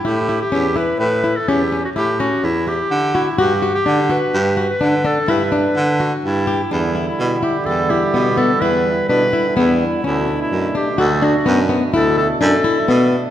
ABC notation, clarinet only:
X:1
M:7/4
L:1/16
Q:1/4=126
K:Edor
V:1 name="Clarinet"
G3 G3 B2 B3 A G3 F G2 F2 E2 G4 E2 | G3 G3 B4- B B3 A2 B8 E4 | E3 E3 G2 A2 G4 A2 B4 B4 E4 | E3 E3 G2 A2 F4 z2 A2 A2 A6 z2 |]